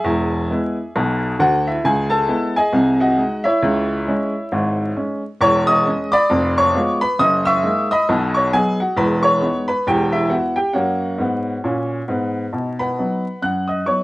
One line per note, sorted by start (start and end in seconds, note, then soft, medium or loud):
0.00 1.36 G#4 medium
0.00 1.37 E5 medium
0.00 1.40 G#5 medium
0.04 0.43 E1 medium
0.04 0.43 E2 medium
0.51 0.75 G#3 soft
0.51 0.76 B3 soft
0.51 0.76 E4 soft
0.96 1.33 B1 medium
0.96 1.33 B2 medium
1.39 1.75 D2 medium
1.39 1.75 D3 medium
1.39 1.64 F#4 medium
1.39 1.66 F#5 medium
1.67 1.85 E4 soft
1.67 1.85 E5 medium
1.84 2.23 C#2 medium
1.84 2.22 C#3 medium
1.84 2.10 G#4 medium
1.84 2.11 G#5 medium
2.10 2.52 A4 medium
2.10 2.55 A5 medium
2.28 2.53 G#3 soft
2.28 2.53 B3 medium
2.28 2.53 E4 medium
2.56 2.98 G#4 medium
2.56 2.98 D#5 medium
2.56 3.00 G#5 medium
2.73 3.11 C2 medium
2.73 3.11 C3 medium
3.00 3.42 F#4 medium
3.00 3.42 D#5 medium
3.00 3.45 F#5 medium
3.18 3.42 G#3 soft
3.18 3.43 D#4 soft
3.44 4.93 E4 medium
3.44 4.93 C#5 medium
3.44 4.96 E5 medium
3.62 4.01 C#2 medium
3.62 4.01 C#3 medium
4.07 4.32 G#3 medium
4.07 4.33 C#4 soft
4.52 4.90 G#1 medium
4.52 4.90 G#2 medium
4.96 5.21 G#3 soft
4.96 5.21 C#4 soft
5.41 5.79 E1 medium
5.41 5.79 E2 medium
5.41 5.66 C#5 medium
5.41 5.67 C#6 loud
5.67 6.09 D#5 medium
5.67 6.12 D#6 loud
5.86 6.11 G#3 soft
5.86 6.11 C#4 medium
6.12 6.54 D5 loud
6.12 6.54 B5 medium
6.12 6.56 D6 loud
6.30 6.68 F1 medium
6.30 6.68 F2 medium
6.58 6.99 C#5 medium
6.58 7.01 C#6 loud
6.75 6.99 G#3 soft
6.75 6.99 B3 soft
6.75 7.00 F4 soft
7.01 7.19 B4 medium
7.01 7.19 B5 loud
7.19 7.57 F#1 medium
7.19 7.57 F#2 medium
7.19 7.44 D#5 medium
7.19 7.45 D#6 loud
7.45 7.87 E5 medium
7.45 7.87 C#6 medium
7.45 7.90 E6 loud
7.63 7.87 G#3 medium
7.63 7.88 A#3 soft
7.63 7.88 D#4 medium
7.91 8.32 D#5 medium
7.91 8.33 B5 medium
7.91 8.35 D#6 medium
8.09 8.46 B1 medium
8.09 8.47 B2 medium
8.34 8.53 C#5 medium
8.34 8.53 C#6 medium
8.53 8.77 F#3 soft
8.53 8.78 B3 soft
8.53 8.78 D#4 soft
8.53 8.78 G#4 medium
8.53 8.79 G#5 loud
8.80 8.97 F#4 medium
8.80 8.98 F#5 medium
8.96 9.34 E1 medium
8.96 9.35 E2 medium
8.96 9.22 B4 medium
8.96 9.23 B5 medium
9.23 9.65 C#5 medium
9.23 9.67 C#6 medium
9.41 9.66 G#3 soft
9.41 9.66 B3 medium
9.41 9.67 D#4 soft
9.68 9.85 B4 medium
9.68 9.86 B5 medium
9.87 10.24 E1 medium
9.87 10.24 E2 medium
9.87 10.12 G4 medium
9.87 10.13 G5 medium
10.12 10.28 E4 medium
10.12 10.31 E5 medium
10.30 10.54 B3 soft
10.30 10.54 E4 soft
10.30 10.55 F#4 medium
10.30 10.56 F#5 medium
10.56 10.74 G4 medium
10.56 10.75 G5 medium
10.73 11.10 F#2 soft
10.73 11.11 A#3 medium
10.73 12.04 F#4 soft
10.73 12.04 C#5 soft
10.73 12.07 F#5 medium
11.18 11.54 G#2 medium
11.18 11.55 B3 medium
11.64 11.99 A#2 medium
11.64 12.00 C#4 soft
12.08 12.44 G#2 medium
12.08 12.45 B3 medium
12.53 12.91 B2 soft
12.53 12.79 D#4 soft
12.79 13.39 B4 medium
12.79 13.39 F#5 medium
12.79 13.42 B5 medium
12.99 13.23 F#3 soft
12.99 13.23 B3 soft
12.99 13.23 D#4 soft
13.42 13.80 F#2 soft
13.42 13.67 F#5 medium
13.42 13.68 F#6 medium
13.68 13.86 D#5 soft
13.68 13.86 D#6 soft
13.86 14.04 F#3 soft
13.86 14.04 B3 soft
13.86 14.04 D#4 soft
13.86 14.04 C#5 medium
13.86 14.04 C#6 medium